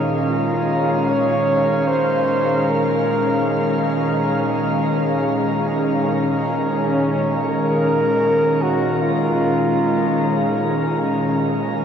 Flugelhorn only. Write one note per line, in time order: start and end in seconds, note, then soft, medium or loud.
0.31 1.10 F4 medium
1.08 1.89 C#5 loud
1.88 2.71 C5 medium
2.69 4.28 A#4 medium
6.66 7.39 C#4 medium
7.45 8.64 A#4 loud
8.62 9.04 F#4 medium
9.02 11.41 F4 loud